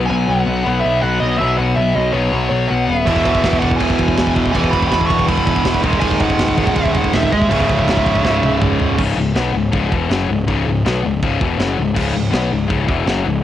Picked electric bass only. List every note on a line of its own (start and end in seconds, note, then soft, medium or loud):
0.09 0.25 B1 loud
0.28 0.44 B1 loud
0.46 0.62 B1 loud
0.66 0.82 B1 medium
0.85 1.00 B1 medium
1.03 1.19 B1 loud
1.21 1.37 B1 medium
1.40 1.56 B1 medium
1.58 1.74 B1 loud
1.77 1.93 B1 loud
1.95 2.11 B1 loud
2.13 2.29 B1 medium
2.32 2.48 B1 medium
2.51 2.67 B1 medium
2.71 2.86 B1 medium
2.88 3.04 D#1 medium
3.07 3.23 E1 loud
3.25 3.41 E1 loud
3.44 3.60 E1 loud
3.62 3.78 E1 medium
3.81 3.96 E1 medium
3.99 4.15 E1 medium
4.17 4.33 E1 medium
4.36 4.52 E1 medium
4.55 4.71 E1 loud
4.73 4.89 E1 medium
4.92 5.07 E1 loud
5.10 5.26 E1 medium
5.28 5.44 E1 medium
5.46 5.63 E1 medium
5.65 5.81 E1 loud
5.83 6.00 D#1 medium
6.02 6.18 D#1 medium
6.20 6.36 D#1 loud
6.40 6.55 D#1 loud
6.57 6.74 D#1 medium
6.76 6.92 D#1 medium
6.95 7.11 D#1 medium
7.14 7.30 D#1 medium
7.32 7.48 D#1 loud
7.51 7.67 C#1 loud
7.69 7.85 C#1 loud
7.88 8.04 C#1 loud
8.07 8.22 C#1 medium
8.25 8.41 C#1 medium
8.42 8.59 C#1 loud
8.61 8.78 C#1 medium
8.79 8.96 C#1 medium
8.99 9.15 C#1 loud
9.16 9.34 C#1 medium
9.35 9.52 B1 loud
9.52 9.71 C#1 medium
9.73 9.90 C#1 medium
9.92 10.09 E1 medium
10.10 10.27 F#1 medium
10.28 10.46 C#1 medium
10.48 10.65 C#1 loud
10.67 10.84 C#1 medium
10.85 11.02 B1 loud
11.04 11.21 C#1 medium
11.23 11.40 C#1 medium
11.41 11.58 E1 medium
11.58 11.76 F#1 medium
11.78 11.95 C#1 medium
11.97 12.13 C#1 loud
12.14 12.32 C#1 medium
12.33 12.50 B1 loud
12.51 12.69 C#1 medium
12.70 12.87 C#1 medium
12.88 13.06 E1 loud
13.06 13.24 F#1 loud
13.26 13.43 C#1 medium